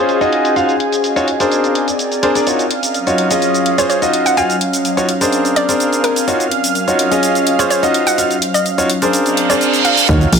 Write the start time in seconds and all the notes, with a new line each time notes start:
Already playing: C#4 F4 G#4 C5 F5 G#5
0.09 closed hi-hat, shaker
0.21 D#4 F4 F#4 D#5, closed hi-hat, shaker
0.33 closed hi-hat
0.45 closed hi-hat, shaker
0.56 D#4 F4 F#4 F5, closed hi-hat, shaker
0.69 closed hi-hat, shaker
0.80 closed hi-hat
0.92 closed hi-hat, shaker
1.04 closed hi-hat, shaker
1.16 D#4 F4 F#4 C#5, closed hi-hat, shaker
1.28 C4, closed hi-hat
1.40 D4 G#4 A#4 C5, closed hi-hat, shaker
1.51 closed hi-hat, shaker
1.63 D5, closed hi-hat, shaker
1.75 closed hi-hat
1.82 A#4 G#5
1.88 closed hi-hat, shaker
1.99 closed hi-hat, shaker
2.12 closed hi-hat, shaker
2.23 D4 G#4 A#4 C5, closed hi-hat
2.35 D4 G#4 A#4 D5, closed hi-hat, shaker
2.47 C#4 D#4 F4 F#4 C#5 F5, closed hi-hat, shaker
2.59 closed hi-hat, shaker
2.64 D#5
2.71 F5, closed hi-hat
2.83 closed hi-hat, shaker
2.94 closed hi-hat, shaker
3.07 D#4 F4 F#4 C#5, closed hi-hat, shaker
3.18 closed hi-hat
3.31 C#4 F4 G#4 D#5, closed hi-hat, shaker
3.42 closed hi-hat, shaker
3.54 closed hi-hat, shaker
3.66 closed hi-hat
3.74 C5 C#5
3.78 C#4 F4 G#4, closed hi-hat, shaker
3.89 C#5, closed hi-hat, shaker
4.02 D#4 F4 F#4 D#5, closed hi-hat, shaker
4.13 closed hi-hat
4.26 F#3 F#5, closed hi-hat, shaker
4.37 D#4 F4 F#4 F5 G#5, closed hi-hat, shaker
4.50 closed hi-hat, shaker
4.61 closed hi-hat
4.73 closed hi-hat, shaker
4.85 closed hi-hat, shaker
4.97 D#4 F4 F#4 C#5, closed hi-hat, shaker
5.09 C4, closed hi-hat
5.21 D4 G#4 A#4 C5, closed hi-hat, shaker
5.32 closed hi-hat, shaker
5.45 closed hi-hat, shaker
5.50 A#4
5.56 D5, closed hi-hat
5.62 D5 G#5
5.69 D4 G#4 A#4 C5, closed hi-hat, shaker
5.80 closed hi-hat, shaker
5.93 closed hi-hat, shaker
6.04 A#4, closed hi-hat
6.16 closed hi-hat, shaker
6.28 C#4 D#4 F4 F#4 C#5, closed hi-hat, shaker
6.40 closed hi-hat, shaker
6.51 closed hi-hat
6.58 F#3
6.64 closed hi-hat, shaker
6.71 D#5 F5
6.75 closed hi-hat, shaker
6.88 D#4 F4 F#4 C#5, closed hi-hat, shaker
6.99 closed hi-hat
7.11 C#4 F4 G#4 D#5, closed hi-hat, shaker
7.23 closed hi-hat, shaker
7.35 closed hi-hat, shaker
7.47 closed hi-hat
7.55 C#4 F4 G#4 C5 C#5, closed hi-hat
7.60 shaker
7.70 C#5, closed hi-hat, shaker
7.83 D#4 F4 F#4 D#5, closed hi-hat, shaker
7.94 closed hi-hat
8.07 F#5, closed hi-hat, shaker
8.18 D#4 F4 F#4 F5, closed hi-hat, shaker
8.27 F#3, closed hi-hat
8.31 shaker
8.42 closed hi-hat
8.54 D#5, closed hi-hat, shaker
8.66 closed hi-hat, shaker
8.78 D#4 F4 F#4 C#5, closed hi-hat, shaker
8.90 C4, closed hi-hat
9.02 D4 G#4 A#4 C5, closed hi-hat, shaker
9.13 A#4 D5, closed hi-hat, reverse cymbal, shaker
9.26 closed hi-hat, shaker
9.37 closed hi-hat
9.43 G#5
9.50 D4 G#4 A#4 C5 D5, closed hi-hat, shaker
9.61 closed hi-hat, shaker
9.73 closed hi-hat, shaker
9.85 F5, closed hi-hat
9.97 closed hi-hat, shaker
10.08 D#2 C#4 D#4 F4 F#4 C#5 F5, kick, closed hi-hat, impact, shaker
10.21 closed hi-hat, shaker
10.32 A#1, open hi-hat